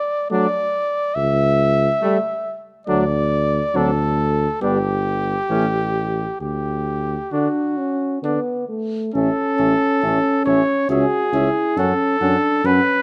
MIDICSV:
0, 0, Header, 1, 6, 480
1, 0, Start_track
1, 0, Key_signature, 2, "major"
1, 0, Tempo, 864553
1, 646, Time_signature, 3, 2, 24, 8
1, 3055, Tempo, 910470
1, 4974, Key_signature, 3, "major"
1, 4975, Tempo, 873362
1, 7106, End_track
2, 0, Start_track
2, 0, Title_t, "Trumpet"
2, 0, Program_c, 0, 56
2, 0, Note_on_c, 0, 74, 77
2, 154, Note_off_c, 0, 74, 0
2, 168, Note_on_c, 0, 74, 70
2, 637, Note_on_c, 0, 76, 81
2, 645, Note_off_c, 0, 74, 0
2, 1441, Note_off_c, 0, 76, 0
2, 1594, Note_on_c, 0, 74, 71
2, 2091, Note_on_c, 0, 69, 68
2, 2100, Note_off_c, 0, 74, 0
2, 2562, Note_off_c, 0, 69, 0
2, 2566, Note_on_c, 0, 67, 74
2, 3512, Note_off_c, 0, 67, 0
2, 3533, Note_on_c, 0, 67, 54
2, 4014, Note_on_c, 0, 66, 43
2, 4022, Note_off_c, 0, 67, 0
2, 4495, Note_off_c, 0, 66, 0
2, 4982, Note_on_c, 0, 76, 39
2, 5070, Note_off_c, 0, 76, 0
2, 5221, Note_on_c, 0, 76, 34
2, 5309, Note_off_c, 0, 76, 0
2, 5458, Note_on_c, 0, 76, 42
2, 5546, Note_off_c, 0, 76, 0
2, 5707, Note_on_c, 0, 76, 36
2, 5795, Note_off_c, 0, 76, 0
2, 5939, Note_on_c, 0, 76, 37
2, 6027, Note_off_c, 0, 76, 0
2, 6181, Note_on_c, 0, 76, 38
2, 6269, Note_off_c, 0, 76, 0
2, 6426, Note_on_c, 0, 78, 40
2, 6514, Note_off_c, 0, 78, 0
2, 6661, Note_on_c, 0, 78, 37
2, 6749, Note_off_c, 0, 78, 0
2, 6907, Note_on_c, 0, 78, 44
2, 6995, Note_off_c, 0, 78, 0
2, 7106, End_track
3, 0, Start_track
3, 0, Title_t, "Trumpet"
3, 0, Program_c, 1, 56
3, 177, Note_on_c, 1, 62, 45
3, 266, Note_off_c, 1, 62, 0
3, 1120, Note_on_c, 1, 57, 47
3, 1209, Note_off_c, 1, 57, 0
3, 1600, Note_on_c, 1, 62, 42
3, 1688, Note_off_c, 1, 62, 0
3, 2082, Note_on_c, 1, 62, 42
3, 2171, Note_off_c, 1, 62, 0
3, 2566, Note_on_c, 1, 62, 39
3, 2655, Note_off_c, 1, 62, 0
3, 3052, Note_on_c, 1, 61, 33
3, 3137, Note_off_c, 1, 61, 0
3, 4015, Note_on_c, 1, 62, 33
3, 4099, Note_off_c, 1, 62, 0
3, 4497, Note_on_c, 1, 62, 29
3, 4581, Note_off_c, 1, 62, 0
3, 4974, Note_on_c, 1, 69, 59
3, 5676, Note_off_c, 1, 69, 0
3, 5698, Note_on_c, 1, 73, 59
3, 5932, Note_off_c, 1, 73, 0
3, 5939, Note_on_c, 1, 68, 56
3, 6422, Note_on_c, 1, 69, 63
3, 6430, Note_off_c, 1, 68, 0
3, 6905, Note_on_c, 1, 71, 65
3, 6913, Note_off_c, 1, 69, 0
3, 7106, Note_off_c, 1, 71, 0
3, 7106, End_track
4, 0, Start_track
4, 0, Title_t, "Trombone"
4, 0, Program_c, 2, 57
4, 173, Note_on_c, 2, 54, 47
4, 262, Note_off_c, 2, 54, 0
4, 1121, Note_on_c, 2, 55, 43
4, 1210, Note_off_c, 2, 55, 0
4, 1599, Note_on_c, 2, 54, 44
4, 1687, Note_off_c, 2, 54, 0
4, 2078, Note_on_c, 2, 54, 42
4, 2167, Note_off_c, 2, 54, 0
4, 2563, Note_on_c, 2, 55, 37
4, 2652, Note_off_c, 2, 55, 0
4, 3049, Note_on_c, 2, 52, 36
4, 3134, Note_off_c, 2, 52, 0
4, 4013, Note_on_c, 2, 50, 30
4, 4098, Note_off_c, 2, 50, 0
4, 4489, Note_on_c, 2, 50, 29
4, 4573, Note_off_c, 2, 50, 0
4, 4970, Note_on_c, 2, 61, 40
4, 5057, Note_off_c, 2, 61, 0
4, 5207, Note_on_c, 2, 61, 35
4, 5295, Note_off_c, 2, 61, 0
4, 5458, Note_on_c, 2, 61, 36
4, 5546, Note_off_c, 2, 61, 0
4, 5696, Note_on_c, 2, 61, 37
4, 5784, Note_off_c, 2, 61, 0
4, 5934, Note_on_c, 2, 61, 38
4, 6022, Note_off_c, 2, 61, 0
4, 6176, Note_on_c, 2, 61, 37
4, 6264, Note_off_c, 2, 61, 0
4, 6415, Note_on_c, 2, 61, 44
4, 6503, Note_off_c, 2, 61, 0
4, 6658, Note_on_c, 2, 61, 37
4, 6746, Note_off_c, 2, 61, 0
4, 6899, Note_on_c, 2, 61, 37
4, 6987, Note_off_c, 2, 61, 0
4, 7106, End_track
5, 0, Start_track
5, 0, Title_t, "French horn"
5, 0, Program_c, 3, 60
5, 168, Note_on_c, 3, 57, 45
5, 257, Note_off_c, 3, 57, 0
5, 1123, Note_on_c, 3, 57, 43
5, 1212, Note_off_c, 3, 57, 0
5, 1593, Note_on_c, 3, 57, 42
5, 1682, Note_off_c, 3, 57, 0
5, 2083, Note_on_c, 3, 60, 41
5, 2172, Note_off_c, 3, 60, 0
5, 2562, Note_on_c, 3, 59, 37
5, 2651, Note_off_c, 3, 59, 0
5, 3052, Note_on_c, 3, 57, 35
5, 3136, Note_off_c, 3, 57, 0
5, 4016, Note_on_c, 3, 62, 44
5, 4253, Note_on_c, 3, 61, 41
5, 4261, Note_off_c, 3, 62, 0
5, 4487, Note_off_c, 3, 61, 0
5, 4490, Note_on_c, 3, 59, 41
5, 4729, Note_off_c, 3, 59, 0
5, 4734, Note_on_c, 3, 57, 34
5, 4968, Note_off_c, 3, 57, 0
5, 4975, Note_on_c, 3, 61, 53
5, 5915, Note_off_c, 3, 61, 0
5, 5937, Note_on_c, 3, 66, 54
5, 6178, Note_on_c, 3, 64, 42
5, 6187, Note_off_c, 3, 66, 0
5, 6421, Note_on_c, 3, 61, 50
5, 6430, Note_off_c, 3, 64, 0
5, 6654, Note_off_c, 3, 61, 0
5, 6658, Note_on_c, 3, 62, 49
5, 6892, Note_off_c, 3, 62, 0
5, 6899, Note_on_c, 3, 61, 42
5, 7106, Note_off_c, 3, 61, 0
5, 7106, End_track
6, 0, Start_track
6, 0, Title_t, "Tuba"
6, 0, Program_c, 4, 58
6, 647, Note_on_c, 4, 37, 58
6, 1042, Note_off_c, 4, 37, 0
6, 1604, Note_on_c, 4, 38, 53
6, 2005, Note_off_c, 4, 38, 0
6, 2085, Note_on_c, 4, 38, 55
6, 2486, Note_off_c, 4, 38, 0
6, 2572, Note_on_c, 4, 31, 47
6, 2974, Note_off_c, 4, 31, 0
6, 3055, Note_on_c, 4, 33, 44
6, 3451, Note_off_c, 4, 33, 0
6, 3530, Note_on_c, 4, 38, 42
6, 3934, Note_off_c, 4, 38, 0
6, 4974, Note_on_c, 4, 33, 44
6, 5062, Note_off_c, 4, 33, 0
6, 5217, Note_on_c, 4, 33, 43
6, 5305, Note_off_c, 4, 33, 0
6, 5457, Note_on_c, 4, 33, 44
6, 5545, Note_off_c, 4, 33, 0
6, 5697, Note_on_c, 4, 33, 42
6, 5785, Note_off_c, 4, 33, 0
6, 5935, Note_on_c, 4, 37, 44
6, 6023, Note_off_c, 4, 37, 0
6, 6173, Note_on_c, 4, 37, 42
6, 6261, Note_off_c, 4, 37, 0
6, 6418, Note_on_c, 4, 42, 48
6, 6506, Note_off_c, 4, 42, 0
6, 6658, Note_on_c, 4, 42, 46
6, 6746, Note_off_c, 4, 42, 0
6, 6896, Note_on_c, 4, 42, 45
6, 6984, Note_off_c, 4, 42, 0
6, 7106, End_track
0, 0, End_of_file